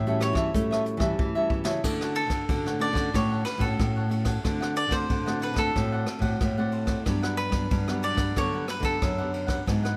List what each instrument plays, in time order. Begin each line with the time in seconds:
Already playing: nylon-string guitar A2 E3, cavaquinho E5
0.06 nylon-string guitar G3 C#4 F#4, cavaquinho A4 C#5 E5, closed hi-hat
0.20 cavaquinho G4 A4 C#5 E5, cross-stick, closed hi-hat
0.33 nylon-string guitar E3, cavaquinho C#5 E5, kick, cross-stick
0.37 cavaquinho A4
0.54 nylon-string guitar A2 G3 A3 C#4 F#4, cavaquinho G4 A4 C#5 E5, kick, closed hi-hat
0.71 cavaquinho A4 C#5 E5, cross-stick
0.85 muted cavaquinho stroke, closed hi-hat
0.97 nylon-string guitar E3 G3 C#4 F#4, cavaquinho C#5 E5, kick, cross-stick, closed hi-hat
1.01 cavaquinho A4
1.19 nylon-string guitar E3, kick
1.35 nylon-string guitar G3 C#4 F#4, cavaquinho A4 C#5 E5
1.50 cavaquinho G4 A4 C#5 E5, kick
1.64 nylon-string guitar C#3, cavaquinho A4 C#5 E5, snare
1.84 nylon-string guitar D3 A3 C#4 F#4, cavaquinho D4 A4 C#5 F#5, kick, cross-stick, crash
2.01 cavaquinho A4 C#5 F#5, cross-stick
2.15 cavaquinho A4, muted cavaquinho stroke, ride
2.27 nylon-string guitar D3, kick, cross-stick, ride
2.49 nylon-string guitar A2 D3 A3 C#4 F#4, cavaquinho D4 A4 C#5 F#5, kick, ride
2.65 cavaquinho A4 C#5 F#5, cross-stick
2.79 nylon-string guitar A3 C#4 F#4, cavaquinho D4 A4 C#5 D5 F#5, ride
2.93 nylon-string guitar D3, cavaquinho A4 C#5 F#5, kick, cross-stick, ride
3.13 nylon-string guitar A2 D3 A3 C#4 F#4, cavaquinho D4 A4 C#5 F#5, kick, cross-stick, ride
3.30 cavaquinho A4 C#5 F#5
3.45 cavaquinho B4, muted cavaquinho stroke, cross-stick, ride
3.58 nylon-string guitar A2 A3 C#4 F#4, cavaquinho A4 C#5 F#5, kick, ride
3.78 nylon-string guitar A2, kick, cross-stick, ride
3.96 cavaquinho A4 C#5 F#5
4.09 nylon-string guitar A3 C#4 F#4, cavaquinho D4 A4 C#5 F#5, ride
4.24 cavaquinho A4 C#5 F#5, kick, cross-stick, ride
4.44 nylon-string guitar D3 A3 C4 F#4, cavaquinho D4 C5 D5 F#5, kick, cross-stick, ride
4.61 cavaquinho C5 D5 F#5, cross-stick
4.74 cavaquinho D5, muted cavaquinho stroke, ride
4.88 nylon-string guitar D3 A3 C4 F#4, kick, cross-stick, ride
4.92 cavaquinho C5
5.08 nylon-string guitar A2 D3, cavaquinho D4 C5 D5 F#5, kick, ride
5.26 nylon-string guitar A3 C4 F#4, cavaquinho C5 D5 F#5, cross-stick
5.40 cavaquinho D4 B4 C5 D5 F#5, ride
5.54 nylon-string guitar D3 A3 C4, cavaquinho C5 D5 F#5, kick, cross-stick, ride
5.58 nylon-string guitar F#4, cavaquinho A4
5.75 nylon-string guitar A2 D3 A3 C4 F#4, cavaquinho D4 C5 D5 F#5, kick, cross-stick, ride
5.92 cavaquinho C5 D5 F#5
6.06 muted cavaquinho stroke, cross-stick, ride
6.19 nylon-string guitar A2 A3 C4 F#4, cavaquinho D5 F#5, kick, ride
6.23 cavaquinho C5
6.41 nylon-string guitar A2, kick, cross-stick, ride
6.57 nylon-string guitar A3 C4 F#4, cavaquinho C5 D5 F#5
6.71 cavaquinho D4 C5 D5 F#5, ride
6.86 cavaquinho C5 D5 F#5, kick, cross-stick, ride
7.05 nylon-string guitar G2 F#3 B3 D4, cavaquinho D4 G4 B4 F#5, kick, cross-stick, ride
7.22 cavaquinho G4 B4 F#5, cross-stick
7.37 cavaquinho B4, muted cavaquinho stroke, ride
7.50 nylon-string guitar G2 F#3 B3 D4, kick, cross-stick, ride
7.70 nylon-string guitar G2 D3, cavaquinho D4 G4 B4 F#5, kick, ride
7.88 nylon-string guitar F#3 B3 D4, cavaquinho G4 B4 F#5, cross-stick
8.02 cavaquinho D4 G4 B4 D5 F#5, ride
8.15 nylon-string guitar G2, cavaquinho B4 F#5, kick, cross-stick, ride
8.19 cavaquinho G4
8.35 nylon-string guitar G2 D3 F#3 B3 D4, cavaquinho D4 G4 B4 C#5 F#5, kick, cross-stick, ride
8.53 cavaquinho G4 B4 F#5
8.67 cavaquinho B4, muted cavaquinho stroke, cross-stick, ride
8.80 nylon-string guitar D3 F#3 B3 D4, cavaquinho G4 B4 F#5, kick, ride
8.85 cavaquinho A4
9.01 nylon-string guitar F#2 D3, kick, cross-stick, ride
9.18 nylon-string guitar F#3 B3 D4, cavaquinho G4 B4 F#5
9.33 cavaquinho D4 G4 B4 F#5, ride
9.47 cavaquinho G4 B4 F#5, kick, cross-stick, ride
9.66 nylon-string guitar G#2 F#3 B3 D4, cavaquinho D4 G#4 B4 F#5, kick, cross-stick, ride
9.83 cavaquinho G#4 B4 F#5, cross-stick